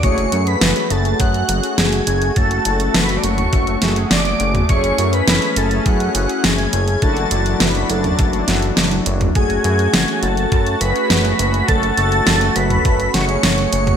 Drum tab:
HH |xxxxxxxxxxxxxxxx|xxxxxxxxxxxxxxxx|xxxxxxxxxxxxxxxx|xxxxxxxxxxxxxxxx|
SD |----o-------o---|----o-----o-o---|----o-------o---|----o-----o-o---|
T2 |----------------|-------o-------o|----------------|-------o-------o|
BD |o-------o-------|o-------o-------|o-------o-------|o-------o-------|

HH |xxxxxxxxxxxxxxxx|xxxxxxxxxxxxxxxx|
SD |----o-------o---|----o-----o-o---|
T2 |----------------|-------o-------o|
BD |o-------o-------|o-------o-------|